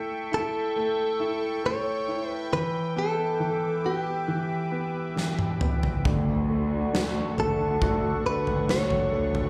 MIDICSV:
0, 0, Header, 1, 6, 480
1, 0, Start_track
1, 0, Key_signature, 2, "major"
1, 0, Tempo, 881057
1, 1368, Time_signature, 4, 2, 24, 8
1, 5173, End_track
2, 0, Start_track
2, 0, Title_t, "Analog synth pad"
2, 0, Program_c, 0, 89
2, 0, Note_on_c, 0, 69, 89
2, 0, Note_on_c, 0, 76, 71
2, 0, Note_on_c, 0, 79, 76
2, 0, Note_on_c, 0, 85, 89
2, 1345, Note_off_c, 0, 76, 0
2, 1353, Note_off_c, 0, 69, 0
2, 1353, Note_off_c, 0, 85, 0
2, 1367, Note_on_c, 0, 71, 77
2, 1368, Note_on_c, 0, 76, 70
2, 1368, Note_on_c, 0, 86, 87
2, 3276, Note_off_c, 0, 71, 0
2, 3277, Note_off_c, 0, 76, 0
2, 3277, Note_off_c, 0, 79, 0
2, 3277, Note_off_c, 0, 86, 0
2, 3294, Note_on_c, 0, 78, 74
2, 3296, Note_on_c, 0, 85, 80
2, 3297, Note_on_c, 0, 62, 69
2, 3297, Note_on_c, 0, 69, 78
2, 5173, Note_off_c, 0, 62, 0
2, 5173, Note_off_c, 0, 69, 0
2, 5173, Note_off_c, 0, 78, 0
2, 5173, Note_off_c, 0, 85, 0
2, 5173, End_track
3, 0, Start_track
3, 0, Title_t, "Clean electric guitar"
3, 0, Program_c, 1, 27
3, 187, Note_on_c, 1, 69, 97
3, 903, Note_off_c, 1, 69, 0
3, 905, Note_on_c, 1, 73, 106
3, 1254, Note_off_c, 1, 73, 0
3, 1254, Note_on_c, 1, 71, 106
3, 1377, Note_off_c, 1, 71, 0
3, 1379, Note_on_c, 1, 71, 108
3, 1598, Note_off_c, 1, 71, 0
3, 1626, Note_on_c, 1, 69, 112
3, 2102, Note_on_c, 1, 67, 74
3, 2113, Note_off_c, 1, 69, 0
3, 3039, Note_off_c, 1, 67, 0
3, 4030, Note_on_c, 1, 69, 91
3, 4500, Note_off_c, 1, 69, 0
3, 4502, Note_on_c, 1, 71, 99
3, 4740, Note_off_c, 1, 71, 0
3, 4742, Note_on_c, 1, 73, 121
3, 5173, Note_off_c, 1, 73, 0
3, 5173, End_track
4, 0, Start_track
4, 0, Title_t, "Grand piano"
4, 0, Program_c, 2, 0
4, 0, Control_c, 2, 64, 127
4, 0, Note_on_c, 2, 57, 58
4, 0, Note_on_c, 2, 64, 68
4, 164, Note_off_c, 2, 64, 0
4, 172, Note_on_c, 2, 64, 68
4, 407, Note_off_c, 2, 57, 0
4, 415, Note_on_c, 2, 57, 70
4, 645, Note_off_c, 2, 64, 0
4, 653, Note_on_c, 2, 64, 64
4, 885, Note_off_c, 2, 57, 0
4, 893, Note_on_c, 2, 57, 65
4, 1125, Note_off_c, 2, 64, 0
4, 1133, Note_on_c, 2, 64, 60
4, 1356, Note_off_c, 2, 57, 0
4, 1364, Note_off_c, 2, 64, 0
4, 1375, Note_on_c, 2, 52, 74
4, 1376, Control_c, 2, 64, 0
4, 1467, Control_c, 2, 64, 127
4, 1613, Note_on_c, 2, 59, 69
4, 1844, Note_off_c, 2, 52, 0
4, 1852, Note_on_c, 2, 52, 61
4, 2087, Note_off_c, 2, 59, 0
4, 2095, Note_on_c, 2, 59, 58
4, 2323, Note_off_c, 2, 52, 0
4, 2332, Note_on_c, 2, 52, 68
4, 2561, Note_off_c, 2, 59, 0
4, 2569, Note_on_c, 2, 59, 59
4, 2803, Note_off_c, 2, 52, 0
4, 2811, Note_on_c, 2, 52, 55
4, 3051, Note_off_c, 2, 59, 0
4, 3059, Note_on_c, 2, 59, 60
4, 3281, Note_off_c, 2, 52, 0
4, 3291, Note_off_c, 2, 59, 0
4, 3298, Note_on_c, 2, 50, 70
4, 3302, Control_c, 2, 64, 0
4, 3407, Control_c, 2, 64, 127
4, 3540, Note_on_c, 2, 57, 56
4, 3777, Note_on_c, 2, 66, 56
4, 4010, Note_off_c, 2, 57, 0
4, 4018, Note_on_c, 2, 57, 65
4, 4255, Note_off_c, 2, 66, 0
4, 4263, Note_on_c, 2, 66, 66
4, 4489, Note_off_c, 2, 57, 0
4, 4497, Note_on_c, 2, 57, 64
4, 4730, Note_off_c, 2, 66, 0
4, 4738, Note_on_c, 2, 66, 64
4, 4960, Note_off_c, 2, 57, 0
4, 4969, Note_on_c, 2, 57, 63
4, 5173, Note_off_c, 2, 50, 0
4, 5173, Note_off_c, 2, 57, 0
4, 5173, Note_off_c, 2, 66, 0
4, 5173, End_track
5, 0, Start_track
5, 0, Title_t, "Cello section"
5, 0, Program_c, 3, 48
5, 3298, Note_on_c, 3, 38, 126
5, 3999, Note_off_c, 3, 38, 0
5, 4019, Note_on_c, 3, 38, 114
5, 4476, Note_off_c, 3, 38, 0
5, 4495, Note_on_c, 3, 38, 92
5, 4950, Note_off_c, 3, 38, 0
5, 4968, Note_on_c, 3, 38, 103
5, 5173, Note_off_c, 3, 38, 0
5, 5173, End_track
6, 0, Start_track
6, 0, Title_t, "Drums"
6, 2819, Note_on_c, 9, 38, 57
6, 2873, Note_off_c, 9, 38, 0
6, 2934, Note_on_c, 9, 48, 65
6, 2989, Note_off_c, 9, 48, 0
6, 3056, Note_on_c, 9, 45, 94
6, 3110, Note_off_c, 9, 45, 0
6, 3177, Note_on_c, 9, 43, 101
6, 3232, Note_off_c, 9, 43, 0
6, 3298, Note_on_c, 9, 36, 104
6, 3298, Note_on_c, 9, 43, 121
6, 3352, Note_off_c, 9, 36, 0
6, 3352, Note_off_c, 9, 43, 0
6, 3785, Note_on_c, 9, 38, 120
6, 3839, Note_off_c, 9, 38, 0
6, 4021, Note_on_c, 9, 43, 61
6, 4076, Note_off_c, 9, 43, 0
6, 4259, Note_on_c, 9, 36, 89
6, 4260, Note_on_c, 9, 43, 71
6, 4313, Note_off_c, 9, 36, 0
6, 4314, Note_off_c, 9, 43, 0
6, 4615, Note_on_c, 9, 43, 64
6, 4670, Note_off_c, 9, 43, 0
6, 4736, Note_on_c, 9, 38, 107
6, 4791, Note_off_c, 9, 38, 0
6, 4851, Note_on_c, 9, 43, 71
6, 4906, Note_off_c, 9, 43, 0
6, 5093, Note_on_c, 9, 43, 73
6, 5147, Note_off_c, 9, 43, 0
6, 5173, End_track
0, 0, End_of_file